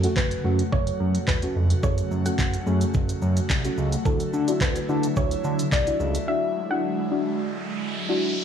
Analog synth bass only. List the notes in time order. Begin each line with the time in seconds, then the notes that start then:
0.16 F#1
0.44 F#2
0.72 F#1
1.00 F#2
1.28 E1
1.56 F1
1.83 F#1
2.11 F#2
2.39 F#1
2.66 F#2
2.95 F#1
3.22 F#2
3.50 C2
3.78 C#2
4.05 D2
4.33 D3
4.61 D2
4.89 D3
5.17 D2
5.44 D3
5.72 C2
6.00 C#2